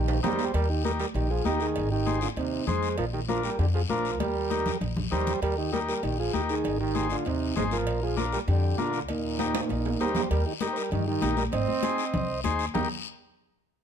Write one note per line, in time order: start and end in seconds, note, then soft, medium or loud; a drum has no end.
0.00 0.18 A#1 loud
0.00 0.20 D#3 medium
0.00 0.20 D#4 medium
0.00 0.20 G4 medium
0.08 high timbale medium
0.23 0.52 G3 loud
0.23 0.45 D#4 medium
0.23 0.45 G4 medium
0.23 0.52 G4 medium
0.23 0.45 A#4 medium
0.23 0.55 C5 loud
0.23 high conga medium
0.23 low conga medium
0.23 low timbale medium
0.23 short guiro medium
0.39 low timbale medium
0.39 short guiro medium
0.54 1.03 D#2 medium
0.54 0.68 G3 loud
0.54 0.68 G4 medium
0.54 0.69 A#4 loud
0.54 cowbell loud
0.54 high conga soft
0.54 long guiro medium
0.70 0.84 D#3 medium
0.70 0.84 D#4 medium
0.70 0.83 G4 medium
0.84 0.92 G3 medium
0.84 1.06 D#4 medium
0.84 0.91 G4 medium
0.84 1.06 G4 medium
0.84 0.92 A#4 loud
0.84 1.06 A#4 medium
0.84 high conga medium
0.84 short guiro medium
1.00 1.06 G3 medium
1.00 1.07 G4 medium
1.00 1.07 A#4 medium
1.00 short guiro medium
1.14 1.39 A#1 loud
1.14 1.29 D#3 medium
1.14 1.30 D#4 medium
1.14 1.31 G4 medium
1.14 cowbell medium
1.14 high conga soft
1.14 long guiro medium
1.31 1.45 F3 medium
1.31 1.45 F4 medium
1.31 1.45 G#4 medium
1.45 1.78 D#2 medium
1.45 1.60 D#3 medium
1.45 1.67 D#4 medium
1.45 1.60 D#4 medium
1.45 1.67 G4 medium
1.45 1.60 G4 medium
1.45 1.67 A#4 medium
1.45 high conga medium
1.45 low timbale medium
1.45 short guiro medium
1.60 1.89 D#3 medium
1.60 1.90 D#4 medium
1.60 1.89 G#4 medium
1.60 short guiro medium
1.75 2.25 G#1 medium
1.75 cowbell loud
1.75 high conga soft
1.75 long guiro medium
1.91 2.20 D#3 medium
1.91 2.20 D#4 medium
1.91 2.20 G4 loud
2.06 2.28 D#4 medium
2.06 2.28 G#4 medium
2.06 2.28 C5 medium
2.06 high conga medium
2.06 short guiro medium
2.21 2.28 D3 medium
2.21 2.30 D4 medium
2.21 2.29 F4 medium
2.21 short guiro medium
2.36 2.61 D#2 medium
2.36 2.66 C3 medium
2.36 2.66 C4 medium
2.36 2.66 D#4 medium
2.36 cowbell medium
2.36 high conga soft
2.36 long guiro medium
2.67 2.99 F2 medium
2.67 2.96 G#3 medium
2.67 2.89 D#4 medium
2.67 2.89 G#4 medium
2.67 2.97 G#4 medium
2.67 2.89 C5 medium
2.67 2.97 C5 loud
2.67 high conga medium
2.67 low conga medium
2.67 short guiro medium
2.83 short guiro medium
2.98 3.47 A#1 medium
2.98 3.05 F3 medium
2.98 3.05 F4 medium
2.98 3.05 A#4 loud
2.98 cowbell loud
2.98 high conga soft
2.98 long guiro medium
3.14 3.20 D#3 medium
3.14 3.21 D#4 medium
3.14 3.20 G4 medium
3.28 3.42 F3 medium
3.28 3.50 D4 medium
3.28 3.50 F4 medium
3.28 3.43 F4 medium
3.28 3.50 A#4 medium
3.28 3.43 A#4 medium
3.28 high conga medium
3.28 short guiro medium
3.43 3.58 G3 medium
3.43 3.58 G4 medium
3.43 3.59 A#4 medium
3.43 short guiro medium
3.59 3.83 F2 medium
3.59 3.66 D3 medium
3.59 3.67 D4 medium
3.59 3.66 G4 medium
3.59 cowbell medium
3.59 high conga soft
3.59 long guiro medium
3.74 3.81 F3 medium
3.74 3.82 F4 medium
3.74 3.82 G#4 medium
3.89 4.19 A#1 medium
3.89 4.18 F3 medium
3.89 4.11 D4 medium
3.89 4.11 F4 medium
3.89 4.19 F4 medium
3.89 4.19 A#4 medium
3.89 4.11 A#4 medium
3.89 high conga medium
3.89 short guiro medium
4.05 short guiro medium
4.19 4.69 D#2 medium
4.19 4.77 G3 medium
4.19 4.78 G4 medium
4.19 4.77 A#4 medium
4.19 cowbell loud
4.19 high conga medium
4.19 long guiro medium
4.50 4.72 D#4 medium
4.50 4.72 G4 medium
4.50 4.72 A#4 medium
4.50 high conga medium
4.50 short guiro medium
4.66 low conga loud
4.66 short guiro medium
4.81 5.05 A#1 medium
4.81 cowbell medium
4.81 low conga medium
4.81 long guiro medium
4.97 low conga loud
5.11 5.36 D#2 medium
5.11 5.40 G3 medium
5.11 5.33 D#4 medium
5.11 5.33 G4 medium
5.11 5.40 G4 medium
5.11 5.33 A#4 medium
5.11 5.40 C5 loud
5.11 low conga medium
5.11 short guiro medium
5.27 low conga medium
5.27 short guiro medium
5.42 5.91 D#2 medium
5.42 5.56 G3 loud
5.42 5.57 G4 medium
5.42 5.57 A#4 loud
5.42 cowbell loud
5.42 high conga soft
5.42 long guiro medium
5.58 5.72 D#3 medium
5.58 5.72 D#4 medium
5.58 5.72 G4 medium
5.72 5.79 G3 medium
5.72 5.94 D#4 medium
5.72 5.94 G4 medium
5.72 5.80 G4 medium
5.72 5.94 A#4 medium
5.72 5.80 A#4 loud
5.72 high conga medium
5.72 short guiro medium
5.89 6.03 G3 medium
5.89 6.03 G4 medium
5.89 6.03 A#4 medium
5.89 short guiro medium
6.03 6.28 A#1 loud
6.03 6.18 D#3 medium
6.03 6.18 D#4 medium
6.03 6.18 G4 medium
6.03 cowbell medium
6.03 high conga soft
6.03 long guiro medium
6.19 6.33 F3 medium
6.19 6.33 F4 medium
6.19 6.35 G#4 medium
6.33 6.66 D#2 medium
6.33 6.41 D#3 medium
6.33 6.55 D#4 medium
6.33 6.41 D#4 medium
6.33 6.55 G4 medium
6.33 6.42 G4 medium
6.33 6.55 A#4 medium
6.33 high conga medium
6.33 short guiro medium
6.49 6.78 D#3 medium
6.49 6.78 D#4 medium
6.49 6.78 G#4 medium
6.49 short guiro medium
6.64 7.13 G#1 medium
6.64 cowbell loud
6.64 high conga soft
6.64 long guiro medium
6.80 7.08 D#3 medium
6.80 7.08 D#4 medium
6.80 7.09 G4 medium
6.95 7.16 D#4 medium
6.95 7.16 G#4 medium
6.95 7.17 C5 medium
6.95 high conga medium
6.95 short guiro medium
7.10 7.25 D3 medium
7.10 7.25 D4 medium
7.10 7.27 F4 medium
7.10 short guiro medium
7.25 7.50 D#2 loud
7.25 7.54 C3 medium
7.25 7.55 C4 medium
7.25 7.55 D#4 medium
7.25 cowbell medium
7.25 high conga soft
7.25 long guiro medium
7.56 7.86 G#1 medium
7.56 7.64 G#3 medium
7.56 7.77 D#4 medium
7.56 7.77 G#4 medium
7.56 7.64 G#4 medium
7.56 7.78 C5 medium
7.56 7.64 C5 medium
7.56 high conga medium
7.56 low conga medium
7.56 low timbale medium
7.56 short guiro medium
7.71 8.00 F3 medium
7.71 8.00 F4 medium
7.71 8.03 A#4 medium
7.71 short guiro medium
7.86 8.35 A#1 medium
7.86 cowbell loud
7.86 high conga soft
7.86 long guiro medium
8.03 8.17 F3 medium
8.03 8.17 F4 medium
8.03 8.18 G#4 medium
8.16 8.25 F3 medium
8.16 8.38 D4 medium
8.16 8.39 F4 medium
8.16 8.25 F4 medium
8.16 8.39 A#4 medium
8.16 8.26 A#4 medium
8.16 high conga medium
8.16 short guiro medium
8.32 8.41 G3 medium
8.32 8.40 G4 medium
8.32 8.40 A#4 medium
8.32 short guiro medium
8.47 8.72 F2 loud
8.47 8.77 D3 medium
8.47 8.76 D4 medium
8.47 8.80 G4 medium
8.47 cowbell medium
8.47 high conga soft
8.47 long guiro medium
8.78 9.09 A#1 medium
8.78 8.94 D3 medium
8.78 8.99 D4 medium
8.78 8.93 D4 medium
8.78 8.99 F4 medium
8.78 8.93 F4 medium
8.78 9.00 A#4 medium
8.78 high conga medium
8.78 low timbale medium
8.78 short guiro medium
8.93 9.02 D3 medium
8.93 9.01 D4 medium
8.93 9.01 F4 medium
8.93 short guiro medium
9.08 9.58 D#2 medium
9.08 9.97 A#2 medium
9.08 10.12 A#3 medium
9.08 10.12 D#4 medium
9.08 cowbell loud
9.08 high conga soft
9.08 long guiro medium
9.39 9.61 D#4 medium
9.39 9.61 G4 medium
9.39 9.61 A#4 medium
9.39 high conga medium
9.39 high timbale medium
9.39 short guiro medium
9.54 high conga medium
9.54 high timbale loud
9.54 short guiro medium
9.69 9.94 A#1 medium
9.69 cowbell medium
9.69 high conga medium
9.69 long guiro medium
9.86 low timbale medium
10.00 10.29 G3 medium
10.00 10.22 D#4 medium
10.00 10.22 G4 medium
10.00 10.29 G4 medium
10.00 10.22 A#4 loud
10.00 10.29 C5 medium
10.00 low timbale medium
10.00 short guiro medium
10.15 low conga medium
10.15 low timbale medium
10.15 short guiro medium
10.30 10.43 D#2 medium
10.30 10.45 G3 medium
10.30 10.45 G4 medium
10.30 10.45 A#4 medium
10.30 cowbell loud
10.30 high conga soft
10.30 long guiro medium
10.46 10.53 D#3 medium
10.46 10.54 D#4 medium
10.46 10.53 G4 medium
10.61 10.67 G3 medium
10.61 10.82 D#4 medium
10.61 10.83 G4 medium
10.61 10.67 G4 medium
10.61 10.67 A#4 medium
10.61 10.83 A#4 medium
10.61 cowbell medium
10.61 high conga medium
10.61 short guiro medium
10.73 10.91 G3 medium
10.73 10.76 G#3 medium
10.73 10.77 C5 medium
10.73 short guiro medium
10.77 10.91 G4 medium
10.77 10.91 A#4 medium
10.91 11.16 G2 medium
10.91 11.06 D#3 medium
10.91 11.06 D#4 medium
10.91 11.06 G4 medium
10.91 cowbell medium
10.91 high conga soft
10.91 low conga medium
10.91 long guiro medium
11.08 11.36 D#3 medium
11.08 11.36 D#4 medium
11.08 11.36 G4 medium
11.22 11.47 A#1 medium
11.22 11.43 D#4 medium
11.22 11.43 G4 medium
11.22 11.44 A#4 medium
11.22 cowbell medium
11.22 high conga medium
11.22 low timbale medium
11.22 short guiro medium
11.37 11.44 G3 medium
11.37 11.45 G4 medium
11.37 11.44 A#4 medium
11.37 high conga medium
11.37 short guiro medium
11.52 11.65 G#1 loud
11.52 12.40 C4 loud
11.52 12.41 C5 medium
11.52 12.40 D#5 loud
11.52 cowbell loud
11.52 high conga soft
11.52 low conga medium
11.52 long guiro medium
11.68 high conga medium
11.83 12.05 D#4 medium
11.83 12.05 G#4 medium
11.83 12.05 C5 medium
11.83 cowbell medium
11.83 high conga medium
11.83 short guiro medium
11.98 short guiro medium
12.13 12.38 C2 medium
12.13 cowbell medium
12.13 high conga soft
12.13 low conga medium
12.13 long guiro medium
12.44 12.69 D#2 medium
12.44 12.66 D#4 medium
12.44 12.66 G#4 medium
12.44 12.66 C5 loud
12.44 cowbell medium
12.44 high conga medium
12.44 short guiro medium
12.59 short guiro medium
12.74 12.89 D#2 loud
12.74 12.89 D#4 medium
12.74 12.89 G4 medium
12.74 12.89 A#4 loud
12.74 low conga medium
12.74 low timbale loud
12.74 long guiro loud